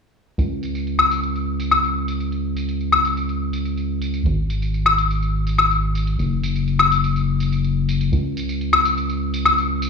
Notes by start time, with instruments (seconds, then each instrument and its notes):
0.38 analog synth bass C#2, tambourine
0.63 tambourine
0.75 tambourine
0.87 tambourine
0.99 high woodblock
1.11 tambourine
1.23 tambourine
1.36 tambourine
1.60 tambourine
1.71 tambourine, high woodblock
1.84 tambourine
2.08 tambourine
2.20 tambourine
2.32 tambourine
2.56 tambourine
2.69 tambourine
2.81 tambourine
2.92 high woodblock
3.05 tambourine
3.17 tambourine
3.29 tambourine
3.53 tambourine
3.65 tambourine
3.77 tambourine
4.02 tambourine
4.14 tambourine
4.25 analog synth bass G#1, tambourine
4.50 tambourine
4.62 tambourine
4.74 tambourine
4.86 high woodblock
4.98 tambourine
5.11 tambourine
5.23 tambourine
5.47 tambourine
5.58 tambourine, high woodblock
5.71 tambourine
5.95 tambourine
6.07 tambourine
6.19 analog synth bass F#1, tambourine
6.43 tambourine
6.56 tambourine
6.68 tambourine
6.79 high woodblock
6.92 tambourine
7.04 tambourine
7.16 tambourine
7.40 tambourine
7.52 tambourine
7.64 tambourine
7.89 tambourine
8.01 tambourine
8.12 analog synth bass C#2, tambourine
8.37 tambourine
8.49 tambourine
8.61 tambourine
8.73 high woodblock
8.85 tambourine
8.97 tambourine
9.10 tambourine
9.34 tambourine
9.45 tambourine, high woodblock
9.58 tambourine
9.82 tambourine